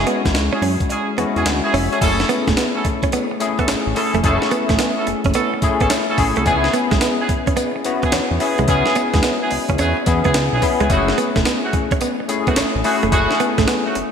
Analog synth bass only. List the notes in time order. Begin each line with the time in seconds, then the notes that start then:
0.25 A1
0.34 C#2
0.62 F#2
1.18 E2
1.36 E2
1.46 D2
1.74 F1
2.01 F#1
2.48 E1
3.69 A1
3.87 A1
4.14 F1
4.24 F#1
4.69 A1
5.07 F#1
5.25 F#1
5.62 A1
5.81 A1
6.18 A1
6.37 C2
6.46 C#2
6.92 B1
8.13 E2
8.31 E2
8.59 C2
8.68 C#2
9.14 E2
9.52 C#2
9.69 C#2
9.78 E2
10.07 E2
10.25 C#2
10.34 C#2
10.53 B1
10.81 C#2
10.90 F#1
11.36 E1
12.57 A1
12.75 A1
13.03 F1
13.12 F#1
13.58 A1
13.96 F#1